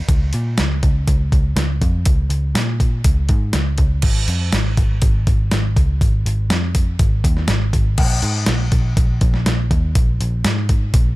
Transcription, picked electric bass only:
0, 0, Header, 1, 2, 480
1, 0, Start_track
1, 0, Tempo, 493421
1, 86, Time_signature, 4, 2, 24, 8
1, 10852, End_track
2, 0, Start_track
2, 0, Title_t, "Picked electric bass"
2, 0, Program_c, 0, 34
2, 81, Note_on_c, 0, 37, 94
2, 308, Note_off_c, 0, 37, 0
2, 332, Note_on_c, 0, 46, 80
2, 553, Note_off_c, 0, 46, 0
2, 579, Note_on_c, 0, 37, 82
2, 798, Note_off_c, 0, 37, 0
2, 809, Note_on_c, 0, 37, 93
2, 1032, Note_off_c, 0, 37, 0
2, 1051, Note_on_c, 0, 37, 91
2, 1273, Note_off_c, 0, 37, 0
2, 1288, Note_on_c, 0, 37, 83
2, 1512, Note_off_c, 0, 37, 0
2, 1518, Note_on_c, 0, 37, 93
2, 1746, Note_off_c, 0, 37, 0
2, 1767, Note_on_c, 0, 41, 85
2, 1991, Note_off_c, 0, 41, 0
2, 2008, Note_on_c, 0, 37, 94
2, 2227, Note_off_c, 0, 37, 0
2, 2233, Note_on_c, 0, 37, 82
2, 2464, Note_off_c, 0, 37, 0
2, 2478, Note_on_c, 0, 46, 92
2, 2932, Note_off_c, 0, 46, 0
2, 2964, Note_on_c, 0, 37, 98
2, 3190, Note_off_c, 0, 37, 0
2, 3201, Note_on_c, 0, 44, 81
2, 3429, Note_off_c, 0, 44, 0
2, 3443, Note_on_c, 0, 37, 86
2, 3670, Note_off_c, 0, 37, 0
2, 3682, Note_on_c, 0, 37, 88
2, 3910, Note_off_c, 0, 37, 0
2, 3920, Note_on_c, 0, 32, 92
2, 4149, Note_off_c, 0, 32, 0
2, 4163, Note_on_c, 0, 41, 79
2, 4390, Note_off_c, 0, 41, 0
2, 4403, Note_on_c, 0, 32, 85
2, 4630, Note_off_c, 0, 32, 0
2, 4643, Note_on_c, 0, 32, 88
2, 4870, Note_off_c, 0, 32, 0
2, 4888, Note_on_c, 0, 32, 95
2, 5113, Note_off_c, 0, 32, 0
2, 5127, Note_on_c, 0, 32, 79
2, 5352, Note_off_c, 0, 32, 0
2, 5373, Note_on_c, 0, 32, 86
2, 5596, Note_off_c, 0, 32, 0
2, 5609, Note_on_c, 0, 37, 78
2, 5833, Note_off_c, 0, 37, 0
2, 5848, Note_on_c, 0, 32, 86
2, 6073, Note_off_c, 0, 32, 0
2, 6087, Note_on_c, 0, 32, 79
2, 6312, Note_off_c, 0, 32, 0
2, 6322, Note_on_c, 0, 41, 84
2, 6775, Note_off_c, 0, 41, 0
2, 6805, Note_on_c, 0, 32, 86
2, 7031, Note_off_c, 0, 32, 0
2, 7045, Note_on_c, 0, 39, 83
2, 7272, Note_off_c, 0, 39, 0
2, 7280, Note_on_c, 0, 32, 93
2, 7509, Note_off_c, 0, 32, 0
2, 7523, Note_on_c, 0, 32, 83
2, 7750, Note_off_c, 0, 32, 0
2, 7766, Note_on_c, 0, 34, 86
2, 7992, Note_off_c, 0, 34, 0
2, 8004, Note_on_c, 0, 44, 80
2, 8230, Note_off_c, 0, 44, 0
2, 8245, Note_on_c, 0, 34, 81
2, 8471, Note_off_c, 0, 34, 0
2, 8487, Note_on_c, 0, 34, 77
2, 8712, Note_off_c, 0, 34, 0
2, 8725, Note_on_c, 0, 34, 89
2, 8951, Note_off_c, 0, 34, 0
2, 8963, Note_on_c, 0, 34, 86
2, 9190, Note_off_c, 0, 34, 0
2, 9212, Note_on_c, 0, 34, 80
2, 9435, Note_off_c, 0, 34, 0
2, 9444, Note_on_c, 0, 39, 85
2, 9670, Note_off_c, 0, 39, 0
2, 9684, Note_on_c, 0, 34, 84
2, 9910, Note_off_c, 0, 34, 0
2, 9929, Note_on_c, 0, 34, 76
2, 10153, Note_off_c, 0, 34, 0
2, 10166, Note_on_c, 0, 44, 86
2, 10616, Note_off_c, 0, 44, 0
2, 10640, Note_on_c, 0, 34, 95
2, 10852, Note_off_c, 0, 34, 0
2, 10852, End_track
0, 0, End_of_file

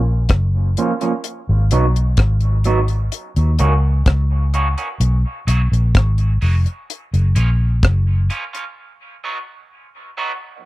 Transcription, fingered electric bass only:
0, 0, Header, 1, 2, 480
1, 0, Start_track
1, 0, Tempo, 941915
1, 1590, Time_signature, 4, 2, 24, 8
1, 5429, End_track
2, 0, Start_track
2, 0, Title_t, "Fingered electric bass"
2, 0, Program_c, 0, 33
2, 0, Note_on_c, 0, 34, 77
2, 142, Note_off_c, 0, 34, 0
2, 153, Note_on_c, 0, 30, 82
2, 380, Note_off_c, 0, 30, 0
2, 760, Note_on_c, 0, 32, 82
2, 868, Note_off_c, 0, 32, 0
2, 878, Note_on_c, 0, 35, 89
2, 1102, Note_off_c, 0, 35, 0
2, 1111, Note_on_c, 0, 32, 92
2, 1570, Note_off_c, 0, 32, 0
2, 1715, Note_on_c, 0, 39, 84
2, 1825, Note_off_c, 0, 39, 0
2, 1835, Note_on_c, 0, 37, 88
2, 2061, Note_off_c, 0, 37, 0
2, 2071, Note_on_c, 0, 37, 84
2, 2416, Note_off_c, 0, 37, 0
2, 2549, Note_on_c, 0, 35, 100
2, 2666, Note_off_c, 0, 35, 0
2, 2789, Note_on_c, 0, 35, 79
2, 2906, Note_off_c, 0, 35, 0
2, 2914, Note_on_c, 0, 34, 84
2, 3025, Note_off_c, 0, 34, 0
2, 3033, Note_on_c, 0, 32, 94
2, 3260, Note_off_c, 0, 32, 0
2, 3273, Note_on_c, 0, 29, 82
2, 3388, Note_off_c, 0, 29, 0
2, 3636, Note_on_c, 0, 30, 80
2, 3746, Note_off_c, 0, 30, 0
2, 3752, Note_on_c, 0, 34, 76
2, 3979, Note_off_c, 0, 34, 0
2, 3992, Note_on_c, 0, 30, 82
2, 4219, Note_off_c, 0, 30, 0
2, 5429, End_track
0, 0, End_of_file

